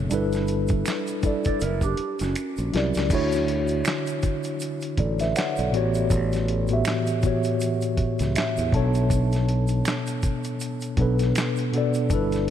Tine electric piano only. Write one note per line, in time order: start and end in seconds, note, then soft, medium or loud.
0.00 0.12 B2 medium
0.00 0.12 B3 medium
0.00 0.11 D4 medium
0.00 0.12 A4 medium
0.00 0.12 C#5 medium
0.10 0.98 G3 loud
0.10 0.99 D4 medium
0.10 1.00 E4 loud
0.10 1.00 A4 medium
0.14 1.01 B4 loud
1.22 1.60 G3 medium
1.22 1.60 D4 medium
1.22 1.61 E4 medium
1.22 1.62 A4 medium
1.27 1.62 D5 medium
2.72 3.03 F#3 medium
2.72 3.03 E4 medium
2.72 3.04 G4 medium
2.72 3.04 A#4 medium
2.77 3.05 D5 medium
3.10 4.26 D3 loud
3.10 4.27 D4 medium
3.10 4.27 E4 medium
3.10 4.28 F#4 medium
3.15 4.29 C#5 loud
4.99 5.19 A4 soft
4.99 5.19 D5 medium
5.21 5.36 B4 medium
5.21 5.35 E5 medium
5.37 5.57 C#5 medium
5.37 5.56 F#5 medium
5.59 5.94 A4 soft
5.59 5.93 D5 medium
5.72 6.47 A2 medium
5.72 6.48 E3 medium
5.72 6.48 B3 medium
5.72 6.49 F#4 medium
5.72 6.49 G4 medium
5.77 6.50 C#5 medium
6.69 7.11 A2 medium
6.69 7.12 E3 medium
6.69 7.12 B3 medium
6.69 7.13 F#4 medium
6.69 7.13 G4 medium
6.73 7.14 E5 medium
7.22 8.39 A2 medium
7.22 8.39 E3 medium
7.22 8.39 B3 medium
7.22 8.40 F#4 medium
7.22 8.40 G4 medium
7.27 8.41 C#5 medium
8.37 8.71 E5 medium
8.72 9.93 B2 medium
8.72 9.94 B3 medium
8.72 9.94 D4 medium
8.72 9.95 A4 medium
8.72 9.08 A5 medium
8.77 9.96 C#5 medium
10.97 11.58 B2 medium
10.97 11.58 B3 medium
10.97 11.59 D4 medium
10.97 11.59 A4 medium
11.02 11.60 B4 medium
11.73 12.03 B2 medium
11.73 12.03 B3 medium
11.73 12.04 D4 medium
11.73 12.05 A4 medium
11.78 12.05 D5 medium
12.10 12.50 G3 medium
12.10 12.50 D4 medium
12.10 12.50 E4 medium
12.10 12.50 A4 medium
12.15 12.50 B4 loud